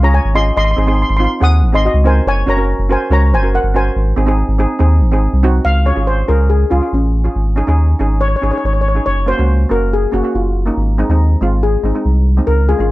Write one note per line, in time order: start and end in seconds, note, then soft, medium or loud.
0.00 0.20 C#2 loud
0.00 0.22 C#4 medium
0.00 0.23 F4 medium
0.00 0.13 C#5 medium
0.04 0.23 G#4 medium
0.04 0.15 A#5 medium
0.14 0.24 C#5 medium
0.14 0.24 G#5 medium
0.25 0.51 G#1 medium
0.35 0.56 C#4 medium
0.35 0.56 F4 medium
0.35 0.57 G#4 medium
0.35 0.55 D#5 medium
0.35 0.56 C6 loud
0.57 0.74 G#1 loud
0.57 0.64 D#5 medium
0.57 0.63 C6 loud
0.65 0.70 C6 medium
0.71 0.78 C6 medium
0.76 1.04 G#1 medium
0.76 0.83 C4 medium
0.76 0.84 D#4 medium
0.76 0.84 G#4 medium
0.76 0.86 C6 medium
0.87 1.07 C4 medium
0.87 1.07 D#4 medium
0.87 1.07 G#4 medium
0.87 0.93 C6 medium
0.95 1.01 C6 medium
1.02 1.08 C6 medium
1.10 1.27 G#1 medium
1.10 1.15 C6 medium
1.17 1.32 C4 medium
1.17 1.33 D#4 medium
1.17 1.33 F4 medium
1.17 1.23 C6 medium
1.24 1.32 C6 medium
1.40 1.63 D#2 loud
1.40 1.60 C4 medium
1.40 1.60 D#4 medium
1.40 1.60 G#4 medium
1.40 1.72 F#5 medium
1.40 1.75 D#6 loud
1.62 1.89 G#1 medium
1.72 1.92 C4 medium
1.72 1.92 D#4 medium
1.72 1.92 G#4 medium
1.72 1.84 D#5 medium
1.72 1.85 C6 loud
1.85 2.04 F#4 medium
1.85 2.07 D#5 medium
1.94 2.20 C#2 loud
2.04 2.26 C4 medium
2.04 2.26 D#4 medium
2.04 2.26 A#4 medium
2.04 2.25 C5 medium
2.04 2.27 G#5 medium
2.26 2.44 F#1 loud
2.26 2.47 C#5 medium
2.26 2.49 G#5 loud
2.46 2.74 F#1 medium
2.46 2.53 C#4 medium
2.46 2.54 F#4 medium
2.46 2.54 A#4 medium
2.46 2.87 C#5 medium
2.46 2.92 A#5 loud
2.57 2.76 C#4 medium
2.57 2.77 F#4 medium
2.57 2.77 A#4 medium
2.79 2.96 F#1 medium
2.89 3.02 C#4 medium
2.89 3.02 F#4 medium
2.89 3.03 A#4 medium
2.89 3.10 C5 medium
2.89 3.13 G#5 medium
3.10 3.33 C#2 loud
3.10 3.30 C#4 medium
3.10 3.30 F#4 medium
3.10 3.30 A#4 medium
3.10 3.31 C#5 medium
3.10 3.34 A#5 medium
3.32 3.58 F#1 loud
3.32 3.53 C5 medium
3.32 3.55 G#5 loud
3.42 3.62 C#4 medium
3.42 3.62 F#4 medium
3.42 3.62 A#4 medium
3.54 3.64 A#4 medium
3.54 3.64 F#5 medium
3.63 3.90 G1 medium
3.74 3.95 C#4 medium
3.74 3.96 F#4 medium
3.74 3.96 A#4 medium
3.74 5.20 C5 medium
3.74 5.20 G#5 medium
3.96 4.13 G#1 medium
4.16 4.43 G#1 medium
4.16 4.23 C4 medium
4.16 4.23 D#4 medium
4.16 4.24 G#4 medium
4.26 4.46 C4 medium
4.26 4.46 D#4 medium
4.26 4.47 G#4 loud
4.48 4.66 G#1 loud
4.59 4.72 C4 medium
4.59 4.72 D#4 medium
4.59 4.72 G#4 loud
4.79 5.02 D#2 loud
4.79 4.99 C4 medium
4.79 4.99 D#4 medium
4.79 4.99 G#4 medium
5.01 5.28 G#1 medium
5.12 5.31 C4 medium
5.12 5.31 D#4 medium
5.12 5.32 G#4 medium
5.33 5.60 C2 medium
5.43 5.65 C4 medium
5.43 5.65 D#4 medium
5.43 5.65 F#4 loud
5.65 5.92 C#2 medium
5.65 5.85 F5 loud
5.85 5.92 C#4 medium
5.85 5.93 F4 medium
5.85 5.93 G#4 medium
5.85 6.08 C#5 medium
5.95 6.23 G#1 medium
5.95 6.16 C#4 medium
5.95 6.16 F4 medium
5.95 6.16 G#4 medium
6.07 6.27 C5 medium
6.28 6.64 C#2 loud
6.28 6.54 C#4 medium
6.28 6.55 F4 medium
6.28 6.55 G#4 medium
6.28 6.51 A#4 medium
6.50 6.72 G#4 medium
6.70 6.81 C#2 medium
6.70 6.77 C#4 medium
6.70 6.78 F4 medium
6.70 6.91 F4 medium
6.70 6.78 G#4 medium
6.81 7.08 C#4 medium
6.81 7.08 F4 medium
6.81 7.08 G#4 medium
6.92 7.28 A1 medium
6.92 7.54 C#4 medium
7.24 7.35 C#4 medium
7.24 7.35 F4 medium
7.24 7.36 G#4 medium
7.35 7.62 G#1 medium
7.56 7.63 C#4 medium
7.56 7.63 D#4 medium
7.56 7.64 G#4 medium
7.67 7.94 D#2 medium
7.67 7.87 C#4 medium
7.67 7.87 D#4 medium
7.67 7.87 G#4 loud
7.99 8.35 G#1 loud
7.99 8.25 C#4 medium
7.99 8.26 D#4 medium
7.99 8.26 G#4 medium
8.21 8.27 C#5 medium
8.28 8.35 C#5 medium
8.36 8.42 C#5 medium
8.42 8.52 G#1 medium
8.42 8.48 C#4 medium
8.42 8.49 D#4 medium
8.42 8.49 G#4 medium
8.42 8.50 C#5 medium
8.51 8.78 C#4 medium
8.51 8.78 D#4 medium
8.51 8.79 G#4 medium
8.51 8.56 C#5 medium
8.58 8.64 C#5 medium
8.64 9.00 G#1 medium
8.64 8.72 C#5 medium
8.73 8.80 C#5 medium
8.81 8.87 C#5 medium
8.88 8.96 C#5 medium
8.95 9.06 C#4 medium
8.95 9.06 D#4 medium
8.95 9.07 G#4 medium
9.06 9.33 F#1 medium
9.06 9.16 C#5 loud
9.26 9.33 A#3 medium
9.26 9.34 C#4 medium
9.26 9.34 F#4 medium
9.26 9.68 C5 medium
9.37 9.65 C#2 medium
9.37 9.57 A#3 medium
9.37 9.58 C#4 medium
9.37 9.58 F#4 medium
9.69 10.06 F#1 loud
9.69 9.95 A#3 medium
9.69 9.96 C#4 medium
9.69 9.96 F#4 medium
9.69 9.81 A#4 medium
9.93 10.14 G#4 medium
10.12 10.22 F#1 medium
10.12 10.19 A#3 medium
10.12 10.19 C#4 medium
10.12 10.20 F#4 medium
10.12 10.35 F#4 medium
10.23 10.49 A#3 medium
10.23 10.49 C#4 medium
10.23 10.50 F#4 medium
10.35 10.70 F#1 medium
10.35 10.95 F4 medium
10.66 10.77 A#3 medium
10.66 10.77 C#4 medium
10.66 10.77 D#4 medium
10.77 11.04 G#1 medium
10.98 11.05 G#3 medium
10.98 11.05 C4 medium
10.98 11.05 D#4 medium
11.09 11.36 D#2 medium
11.09 11.29 G#3 medium
11.09 11.29 C4 medium
11.09 11.29 D#4 loud
11.41 11.77 G#1 loud
11.41 11.67 G#3 medium
11.41 11.67 C4 medium
11.41 11.67 F4 loud
11.63 12.44 G#4 medium
11.83 11.92 G#1 medium
11.83 11.90 G#3 medium
11.83 11.90 C4 medium
11.83 11.91 D#4 medium
11.94 12.20 G#3 medium
11.94 12.20 C4 medium
11.94 12.20 D#4 medium
12.05 12.41 C2 loud
12.37 12.48 G#3 medium
12.37 12.48 C4 medium
12.37 12.48 D#4 medium
12.47 12.74 C#2 medium
12.47 12.57 A#4 medium
12.69 12.75 G#3 medium
12.69 12.75 C#4 medium
12.69 12.76 F4 medium
12.69 12.92 G#4 medium
12.79 12.92 G#1 medium
12.79 12.92 G#3 medium
12.79 12.92 C#4 medium
12.79 12.92 F4 medium